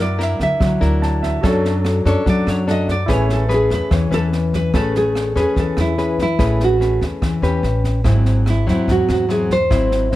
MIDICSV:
0, 0, Header, 1, 6, 480
1, 0, Start_track
1, 0, Key_signature, 3, "major"
1, 0, Tempo, 413793
1, 1663, Time_signature, 4, 2, 24, 8
1, 11782, End_track
2, 0, Start_track
2, 0, Title_t, "Grand piano"
2, 0, Program_c, 0, 0
2, 0, Control_c, 0, 64, 127
2, 0, Note_on_c, 0, 64, 47
2, 0, Note_on_c, 0, 70, 42
2, 0, Note_on_c, 0, 74, 50
2, 1184, Note_on_c, 0, 81, 57
2, 1407, Note_off_c, 0, 81, 0
2, 1422, Note_on_c, 0, 76, 54
2, 1608, Note_off_c, 0, 64, 0
2, 1627, Note_off_c, 0, 70, 0
2, 1632, Note_on_c, 0, 66, 46
2, 1641, Note_off_c, 0, 74, 0
2, 1646, Note_off_c, 0, 76, 0
2, 1650, Note_on_c, 0, 69, 43
2, 1676, Control_c, 0, 64, 0
2, 1679, Note_on_c, 0, 73, 44
2, 1699, Note_on_c, 0, 62, 48
2, 1872, Control_c, 0, 64, 127
2, 3528, Note_off_c, 0, 66, 0
2, 3538, Note_off_c, 0, 69, 0
2, 3550, Note_on_c, 0, 64, 48
2, 3553, Note_off_c, 0, 73, 0
2, 3563, Note_off_c, 0, 62, 0
2, 3575, Note_on_c, 0, 80, 46
2, 3599, Note_on_c, 0, 71, 43
2, 3600, Control_c, 0, 64, 0
2, 3616, Note_on_c, 0, 73, 52
2, 3785, Control_c, 0, 64, 127
2, 5446, Note_off_c, 0, 64, 0
2, 5459, Note_off_c, 0, 80, 0
2, 5471, Note_off_c, 0, 71, 0
2, 5480, Note_off_c, 0, 73, 0
2, 5517, Control_c, 0, 64, 0
2, 11782, End_track
3, 0, Start_track
3, 0, Title_t, "Nylon-string guitar"
3, 0, Program_c, 1, 24
3, 20, Note_on_c, 1, 74, 78
3, 268, Note_off_c, 1, 74, 0
3, 268, Note_on_c, 1, 76, 80
3, 479, Note_off_c, 1, 76, 0
3, 497, Note_on_c, 1, 76, 94
3, 928, Note_off_c, 1, 76, 0
3, 1700, Note_on_c, 1, 69, 85
3, 2355, Note_off_c, 1, 69, 0
3, 2417, Note_on_c, 1, 73, 94
3, 2633, Note_off_c, 1, 73, 0
3, 2660, Note_on_c, 1, 74, 98
3, 2895, Note_off_c, 1, 74, 0
3, 2895, Note_on_c, 1, 73, 84
3, 3113, Note_off_c, 1, 73, 0
3, 3142, Note_on_c, 1, 75, 96
3, 3356, Note_off_c, 1, 75, 0
3, 3377, Note_on_c, 1, 74, 87
3, 3631, Note_off_c, 1, 74, 0
3, 3631, Note_on_c, 1, 73, 86
3, 3840, Note_off_c, 1, 73, 0
3, 3859, Note_on_c, 1, 69, 82
3, 4074, Note_off_c, 1, 69, 0
3, 4108, Note_on_c, 1, 68, 72
3, 4318, Note_off_c, 1, 68, 0
3, 4336, Note_on_c, 1, 71, 92
3, 4576, Note_off_c, 1, 71, 0
3, 4576, Note_on_c, 1, 73, 87
3, 4792, Note_off_c, 1, 73, 0
3, 4800, Note_on_c, 1, 69, 97
3, 4805, Note_off_c, 1, 69, 0
3, 4805, Note_on_c, 1, 69, 88
3, 4940, Note_off_c, 1, 69, 0
3, 5283, Note_on_c, 1, 71, 97
3, 5513, Note_off_c, 1, 71, 0
3, 5518, Note_on_c, 1, 69, 94
3, 5733, Note_off_c, 1, 69, 0
3, 5766, Note_on_c, 1, 68, 85
3, 6244, Note_off_c, 1, 68, 0
3, 6258, Note_on_c, 1, 68, 85
3, 6464, Note_off_c, 1, 68, 0
3, 6490, Note_on_c, 1, 69, 88
3, 6722, Note_off_c, 1, 69, 0
3, 6734, Note_on_c, 1, 64, 75
3, 7207, Note_off_c, 1, 64, 0
3, 7220, Note_on_c, 1, 64, 83
3, 7694, Note_off_c, 1, 64, 0
3, 7705, Note_on_c, 1, 66, 75
3, 8130, Note_off_c, 1, 66, 0
3, 9859, Note_on_c, 1, 64, 76
3, 10078, Note_off_c, 1, 64, 0
3, 10092, Note_on_c, 1, 64, 81
3, 10323, Note_off_c, 1, 64, 0
3, 10338, Note_on_c, 1, 66, 82
3, 10559, Note_off_c, 1, 66, 0
3, 10573, Note_on_c, 1, 66, 76
3, 10797, Note_off_c, 1, 66, 0
3, 10802, Note_on_c, 1, 68, 85
3, 11038, Note_off_c, 1, 68, 0
3, 11048, Note_on_c, 1, 72, 88
3, 11782, Note_off_c, 1, 72, 0
3, 11782, End_track
4, 0, Start_track
4, 0, Title_t, "Nylon-string guitar"
4, 0, Program_c, 2, 24
4, 0, Note_on_c, 2, 54, 56
4, 208, Note_on_c, 2, 62, 55
4, 214, Note_on_c, 2, 64, 60
4, 219, Note_on_c, 2, 70, 61
4, 677, Note_off_c, 2, 54, 0
4, 697, Note_on_c, 2, 54, 57
4, 898, Note_off_c, 2, 62, 0
4, 900, Note_off_c, 2, 64, 0
4, 903, Note_off_c, 2, 70, 0
4, 931, Note_on_c, 2, 62, 55
4, 939, Note_on_c, 2, 64, 56
4, 940, Note_on_c, 2, 70, 64
4, 1620, Note_off_c, 2, 62, 0
4, 1622, Note_off_c, 2, 64, 0
4, 1623, Note_off_c, 2, 70, 0
4, 1636, Note_off_c, 2, 54, 0
4, 1660, Note_on_c, 2, 54, 60
4, 1664, Note_on_c, 2, 61, 60
4, 1670, Note_on_c, 2, 69, 62
4, 1671, Note_on_c, 2, 62, 58
4, 2344, Note_off_c, 2, 61, 0
4, 2346, Note_off_c, 2, 62, 0
4, 2348, Note_off_c, 2, 69, 0
4, 2385, Note_on_c, 2, 61, 64
4, 2392, Note_on_c, 2, 62, 66
4, 2397, Note_on_c, 2, 69, 72
4, 2598, Note_off_c, 2, 54, 0
4, 2622, Note_on_c, 2, 54, 57
4, 3066, Note_off_c, 2, 61, 0
4, 3069, Note_off_c, 2, 62, 0
4, 3072, Note_off_c, 2, 69, 0
4, 3096, Note_on_c, 2, 61, 61
4, 3104, Note_on_c, 2, 62, 62
4, 3108, Note_on_c, 2, 69, 66
4, 3409, Note_off_c, 2, 61, 0
4, 3411, Note_off_c, 2, 62, 0
4, 3415, Note_off_c, 2, 69, 0
4, 3558, Note_off_c, 2, 54, 0
4, 3570, Note_on_c, 2, 57, 57
4, 3572, Note_on_c, 2, 61, 56
4, 3582, Note_on_c, 2, 68, 62
4, 3583, Note_on_c, 2, 71, 63
4, 4018, Note_off_c, 2, 61, 0
4, 4020, Note_off_c, 2, 68, 0
4, 4024, Note_off_c, 2, 71, 0
4, 4043, Note_on_c, 2, 61, 59
4, 4049, Note_on_c, 2, 68, 60
4, 4054, Note_on_c, 2, 71, 68
4, 4513, Note_off_c, 2, 57, 0
4, 4532, Note_on_c, 2, 52, 61
4, 4734, Note_off_c, 2, 61, 0
4, 4737, Note_off_c, 2, 68, 0
4, 4739, Note_off_c, 2, 71, 0
4, 4764, Note_on_c, 2, 61, 62
4, 4775, Note_on_c, 2, 71, 63
4, 5454, Note_off_c, 2, 61, 0
4, 5459, Note_off_c, 2, 71, 0
4, 5472, Note_off_c, 2, 52, 0
4, 5497, Note_on_c, 2, 57, 55
4, 5498, Note_on_c, 2, 61, 54
4, 5500, Note_on_c, 2, 68, 53
4, 5507, Note_on_c, 2, 71, 61
4, 6179, Note_off_c, 2, 61, 0
4, 6182, Note_off_c, 2, 68, 0
4, 6184, Note_off_c, 2, 71, 0
4, 6213, Note_on_c, 2, 61, 56
4, 6219, Note_on_c, 2, 68, 62
4, 6227, Note_on_c, 2, 71, 63
4, 6435, Note_off_c, 2, 57, 0
4, 6456, Note_on_c, 2, 52, 51
4, 6898, Note_off_c, 2, 61, 0
4, 6902, Note_off_c, 2, 68, 0
4, 6904, Note_off_c, 2, 71, 0
4, 6937, Note_on_c, 2, 61, 55
4, 6940, Note_on_c, 2, 68, 56
4, 6946, Note_on_c, 2, 71, 63
4, 7248, Note_off_c, 2, 61, 0
4, 7248, Note_off_c, 2, 68, 0
4, 7252, Note_off_c, 2, 71, 0
4, 7394, Note_off_c, 2, 52, 0
4, 7409, Note_on_c, 2, 57, 56
4, 7414, Note_on_c, 2, 61, 57
4, 7414, Note_on_c, 2, 68, 58
4, 7420, Note_on_c, 2, 71, 59
4, 7858, Note_off_c, 2, 61, 0
4, 7859, Note_off_c, 2, 68, 0
4, 7862, Note_off_c, 2, 71, 0
4, 7890, Note_on_c, 2, 61, 53
4, 7897, Note_on_c, 2, 68, 52
4, 7902, Note_on_c, 2, 71, 55
4, 8350, Note_off_c, 2, 57, 0
4, 8371, Note_on_c, 2, 52, 57
4, 8577, Note_off_c, 2, 61, 0
4, 8580, Note_off_c, 2, 68, 0
4, 8581, Note_off_c, 2, 71, 0
4, 8614, Note_on_c, 2, 61, 55
4, 8623, Note_on_c, 2, 67, 59
4, 8624, Note_on_c, 2, 71, 68
4, 8831, Note_off_c, 2, 52, 0
4, 9300, Note_off_c, 2, 61, 0
4, 9301, Note_off_c, 2, 67, 0
4, 9304, Note_off_c, 2, 71, 0
4, 9332, Note_on_c, 2, 44, 58
4, 9332, Note_on_c, 2, 54, 55
4, 9334, Note_on_c, 2, 60, 57
4, 9341, Note_on_c, 2, 64, 59
4, 9812, Note_off_c, 2, 54, 0
4, 9815, Note_off_c, 2, 60, 0
4, 9817, Note_off_c, 2, 64, 0
4, 10054, Note_on_c, 2, 54, 61
4, 10060, Note_on_c, 2, 60, 56
4, 10063, Note_on_c, 2, 64, 67
4, 10272, Note_off_c, 2, 44, 0
4, 10298, Note_on_c, 2, 44, 56
4, 10739, Note_off_c, 2, 54, 0
4, 10740, Note_off_c, 2, 60, 0
4, 10743, Note_off_c, 2, 64, 0
4, 10772, Note_on_c, 2, 54, 61
4, 10779, Note_on_c, 2, 60, 55
4, 10784, Note_on_c, 2, 64, 55
4, 11086, Note_off_c, 2, 54, 0
4, 11089, Note_off_c, 2, 60, 0
4, 11092, Note_off_c, 2, 64, 0
4, 11236, Note_off_c, 2, 44, 0
4, 11252, Note_on_c, 2, 44, 53
4, 11255, Note_on_c, 2, 54, 51
4, 11261, Note_on_c, 2, 60, 61
4, 11263, Note_on_c, 2, 64, 65
4, 11699, Note_off_c, 2, 54, 0
4, 11701, Note_off_c, 2, 60, 0
4, 11704, Note_off_c, 2, 64, 0
4, 11741, Note_on_c, 2, 54, 59
4, 11782, Note_off_c, 2, 44, 0
4, 11782, Note_off_c, 2, 54, 0
4, 11782, End_track
5, 0, Start_track
5, 0, Title_t, "Upright bass"
5, 0, Program_c, 3, 32
5, 0, Note_on_c, 3, 42, 95
5, 416, Note_off_c, 3, 42, 0
5, 459, Note_on_c, 3, 38, 77
5, 573, Note_off_c, 3, 38, 0
5, 702, Note_on_c, 3, 38, 86
5, 926, Note_off_c, 3, 38, 0
5, 940, Note_on_c, 3, 38, 84
5, 1616, Note_off_c, 3, 38, 0
5, 1662, Note_on_c, 3, 42, 99
5, 2336, Note_off_c, 3, 42, 0
5, 2382, Note_on_c, 3, 42, 85
5, 2494, Note_off_c, 3, 42, 0
5, 2625, Note_on_c, 3, 42, 89
5, 2847, Note_off_c, 3, 42, 0
5, 2860, Note_on_c, 3, 42, 87
5, 3535, Note_off_c, 3, 42, 0
5, 3576, Note_on_c, 3, 33, 94
5, 4253, Note_off_c, 3, 33, 0
5, 4295, Note_on_c, 3, 40, 87
5, 4410, Note_off_c, 3, 40, 0
5, 4534, Note_on_c, 3, 40, 88
5, 4761, Note_off_c, 3, 40, 0
5, 4774, Note_on_c, 3, 40, 84
5, 5451, Note_off_c, 3, 40, 0
5, 5497, Note_on_c, 3, 33, 88
5, 6172, Note_off_c, 3, 33, 0
5, 6211, Note_on_c, 3, 40, 75
5, 6327, Note_off_c, 3, 40, 0
5, 6450, Note_on_c, 3, 40, 82
5, 6678, Note_off_c, 3, 40, 0
5, 6691, Note_on_c, 3, 40, 75
5, 7369, Note_off_c, 3, 40, 0
5, 7412, Note_on_c, 3, 33, 90
5, 8090, Note_off_c, 3, 33, 0
5, 8134, Note_on_c, 3, 40, 78
5, 8248, Note_off_c, 3, 40, 0
5, 8373, Note_on_c, 3, 40, 81
5, 8600, Note_off_c, 3, 40, 0
5, 8610, Note_on_c, 3, 40, 81
5, 8838, Note_off_c, 3, 40, 0
5, 8851, Note_on_c, 3, 33, 84
5, 9301, Note_off_c, 3, 33, 0
5, 9334, Note_on_c, 3, 32, 90
5, 10011, Note_off_c, 3, 32, 0
5, 10063, Note_on_c, 3, 40, 78
5, 10174, Note_off_c, 3, 40, 0
5, 10297, Note_on_c, 3, 40, 80
5, 10522, Note_off_c, 3, 40, 0
5, 10543, Note_on_c, 3, 40, 84
5, 11216, Note_off_c, 3, 40, 0
5, 11258, Note_on_c, 3, 32, 88
5, 11782, Note_off_c, 3, 32, 0
5, 11782, End_track
6, 0, Start_track
6, 0, Title_t, "Drums"
6, 228, Note_on_c, 9, 38, 25
6, 344, Note_off_c, 9, 38, 0
6, 461, Note_on_c, 9, 36, 26
6, 461, Note_on_c, 9, 38, 25
6, 577, Note_off_c, 9, 36, 0
6, 577, Note_off_c, 9, 38, 0
6, 702, Note_on_c, 9, 36, 60
6, 704, Note_on_c, 9, 37, 58
6, 704, Note_on_c, 9, 38, 24
6, 818, Note_off_c, 9, 36, 0
6, 820, Note_off_c, 9, 37, 0
6, 820, Note_off_c, 9, 38, 0
6, 943, Note_on_c, 9, 38, 22
6, 1059, Note_off_c, 9, 38, 0
6, 1188, Note_on_c, 9, 38, 24
6, 1304, Note_off_c, 9, 38, 0
6, 1424, Note_on_c, 9, 36, 22
6, 1427, Note_on_c, 9, 38, 24
6, 1540, Note_off_c, 9, 36, 0
6, 1543, Note_off_c, 9, 38, 0
6, 1664, Note_on_c, 9, 36, 58
6, 1666, Note_on_c, 9, 37, 64
6, 1666, Note_on_c, 9, 38, 25
6, 1780, Note_off_c, 9, 36, 0
6, 1782, Note_off_c, 9, 37, 0
6, 1782, Note_off_c, 9, 38, 0
6, 1910, Note_on_c, 9, 38, 25
6, 2026, Note_off_c, 9, 38, 0
6, 2142, Note_on_c, 9, 37, 57
6, 2142, Note_on_c, 9, 38, 24
6, 2258, Note_off_c, 9, 37, 0
6, 2258, Note_off_c, 9, 38, 0
6, 2382, Note_on_c, 9, 36, 26
6, 2383, Note_on_c, 9, 38, 25
6, 2498, Note_off_c, 9, 36, 0
6, 2499, Note_off_c, 9, 38, 0
6, 2624, Note_on_c, 9, 36, 59
6, 2624, Note_on_c, 9, 38, 23
6, 2740, Note_off_c, 9, 36, 0
6, 2740, Note_off_c, 9, 38, 0
6, 2867, Note_on_c, 9, 37, 57
6, 2867, Note_on_c, 9, 38, 23
6, 2983, Note_off_c, 9, 37, 0
6, 2983, Note_off_c, 9, 38, 0
6, 3104, Note_on_c, 9, 38, 25
6, 3220, Note_off_c, 9, 38, 0
6, 3342, Note_on_c, 9, 36, 22
6, 3344, Note_on_c, 9, 38, 23
6, 3458, Note_off_c, 9, 36, 0
6, 3460, Note_off_c, 9, 38, 0
6, 3576, Note_on_c, 9, 37, 59
6, 3576, Note_on_c, 9, 38, 24
6, 3579, Note_on_c, 9, 36, 60
6, 3692, Note_off_c, 9, 37, 0
6, 3692, Note_off_c, 9, 38, 0
6, 3695, Note_off_c, 9, 36, 0
6, 3820, Note_on_c, 9, 38, 25
6, 3936, Note_off_c, 9, 38, 0
6, 4057, Note_on_c, 9, 38, 23
6, 4173, Note_off_c, 9, 38, 0
6, 4295, Note_on_c, 9, 38, 25
6, 4297, Note_on_c, 9, 36, 23
6, 4411, Note_off_c, 9, 38, 0
6, 4413, Note_off_c, 9, 36, 0
6, 4537, Note_on_c, 9, 36, 59
6, 4538, Note_on_c, 9, 37, 59
6, 4538, Note_on_c, 9, 38, 25
6, 4653, Note_off_c, 9, 36, 0
6, 4654, Note_off_c, 9, 37, 0
6, 4654, Note_off_c, 9, 38, 0
6, 4772, Note_on_c, 9, 38, 23
6, 4888, Note_off_c, 9, 38, 0
6, 5015, Note_on_c, 9, 38, 25
6, 5131, Note_off_c, 9, 38, 0
6, 5255, Note_on_c, 9, 36, 24
6, 5256, Note_on_c, 9, 38, 24
6, 5371, Note_off_c, 9, 36, 0
6, 5372, Note_off_c, 9, 38, 0
6, 5495, Note_on_c, 9, 37, 58
6, 5495, Note_on_c, 9, 38, 22
6, 5496, Note_on_c, 9, 36, 56
6, 5611, Note_off_c, 9, 37, 0
6, 5611, Note_off_c, 9, 38, 0
6, 5612, Note_off_c, 9, 36, 0
6, 5740, Note_on_c, 9, 38, 23
6, 5856, Note_off_c, 9, 38, 0
6, 5978, Note_on_c, 9, 37, 54
6, 5978, Note_on_c, 9, 38, 22
6, 6094, Note_off_c, 9, 37, 0
6, 6094, Note_off_c, 9, 38, 0
6, 6213, Note_on_c, 9, 36, 22
6, 6214, Note_on_c, 9, 38, 24
6, 6329, Note_off_c, 9, 36, 0
6, 6330, Note_off_c, 9, 38, 0
6, 6451, Note_on_c, 9, 38, 21
6, 6454, Note_on_c, 9, 36, 56
6, 6567, Note_off_c, 9, 38, 0
6, 6570, Note_off_c, 9, 36, 0
6, 6691, Note_on_c, 9, 37, 55
6, 6691, Note_on_c, 9, 38, 22
6, 6807, Note_off_c, 9, 37, 0
6, 6807, Note_off_c, 9, 38, 0
6, 6933, Note_on_c, 9, 38, 22
6, 7049, Note_off_c, 9, 38, 0
6, 7173, Note_on_c, 9, 36, 22
6, 7175, Note_on_c, 9, 38, 23
6, 7289, Note_off_c, 9, 36, 0
6, 7291, Note_off_c, 9, 38, 0
6, 7412, Note_on_c, 9, 37, 57
6, 7412, Note_on_c, 9, 38, 23
6, 7413, Note_on_c, 9, 36, 56
6, 7528, Note_off_c, 9, 37, 0
6, 7528, Note_off_c, 9, 38, 0
6, 7529, Note_off_c, 9, 36, 0
6, 7654, Note_on_c, 9, 38, 23
6, 7770, Note_off_c, 9, 38, 0
6, 7897, Note_on_c, 9, 38, 22
6, 8013, Note_off_c, 9, 38, 0
6, 8134, Note_on_c, 9, 36, 24
6, 8137, Note_on_c, 9, 38, 23
6, 8250, Note_off_c, 9, 36, 0
6, 8253, Note_off_c, 9, 38, 0
6, 8375, Note_on_c, 9, 36, 54
6, 8378, Note_on_c, 9, 37, 56
6, 8378, Note_on_c, 9, 38, 22
6, 8491, Note_off_c, 9, 36, 0
6, 8494, Note_off_c, 9, 37, 0
6, 8494, Note_off_c, 9, 38, 0
6, 8619, Note_on_c, 9, 38, 23
6, 8735, Note_off_c, 9, 38, 0
6, 8854, Note_on_c, 9, 38, 23
6, 8970, Note_off_c, 9, 38, 0
6, 9095, Note_on_c, 9, 36, 23
6, 9095, Note_on_c, 9, 38, 22
6, 9211, Note_off_c, 9, 36, 0
6, 9211, Note_off_c, 9, 38, 0
6, 9331, Note_on_c, 9, 37, 58
6, 9331, Note_on_c, 9, 38, 23
6, 9335, Note_on_c, 9, 36, 59
6, 9447, Note_off_c, 9, 37, 0
6, 9447, Note_off_c, 9, 38, 0
6, 9451, Note_off_c, 9, 36, 0
6, 9573, Note_on_c, 9, 38, 23
6, 9689, Note_off_c, 9, 38, 0
6, 9817, Note_on_c, 9, 37, 55
6, 9817, Note_on_c, 9, 38, 22
6, 9933, Note_off_c, 9, 37, 0
6, 9933, Note_off_c, 9, 38, 0
6, 10060, Note_on_c, 9, 36, 24
6, 10068, Note_on_c, 9, 38, 23
6, 10176, Note_off_c, 9, 36, 0
6, 10184, Note_off_c, 9, 38, 0
6, 10299, Note_on_c, 9, 36, 55
6, 10301, Note_on_c, 9, 38, 23
6, 10415, Note_off_c, 9, 36, 0
6, 10417, Note_off_c, 9, 38, 0
6, 10540, Note_on_c, 9, 37, 54
6, 10540, Note_on_c, 9, 38, 23
6, 10656, Note_off_c, 9, 37, 0
6, 10656, Note_off_c, 9, 38, 0
6, 10777, Note_on_c, 9, 38, 25
6, 10893, Note_off_c, 9, 38, 0
6, 11020, Note_on_c, 9, 36, 21
6, 11020, Note_on_c, 9, 38, 22
6, 11136, Note_off_c, 9, 36, 0
6, 11136, Note_off_c, 9, 38, 0
6, 11260, Note_on_c, 9, 36, 58
6, 11260, Note_on_c, 9, 37, 55
6, 11260, Note_on_c, 9, 38, 24
6, 11376, Note_off_c, 9, 36, 0
6, 11376, Note_off_c, 9, 37, 0
6, 11376, Note_off_c, 9, 38, 0
6, 11499, Note_on_c, 9, 38, 25
6, 11615, Note_off_c, 9, 38, 0
6, 11736, Note_on_c, 9, 38, 22
6, 11782, Note_off_c, 9, 38, 0
6, 11782, End_track
0, 0, End_of_file